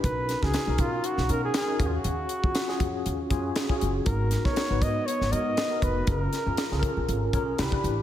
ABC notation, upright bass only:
X:1
M:4/4
L:1/16
Q:"Swing 16ths" 1/4=119
K:G#dor
V:1 name="Upright bass" clef=bass
B,,,3 C,, z B,,, B,,2 z B,,, B,,2 z2 D,,2 | D,,2 z D, z2 E,,2 D,,2 F,,2 z2 F,,,2 | G,,,3 A,,, z G,,, G,,2 z G,,, G,,2 z2 E,,,2 | F,,,2 z F,, z C,, z A,,, G,,,2 B,,,2 =C,,2 =A,,,2 |]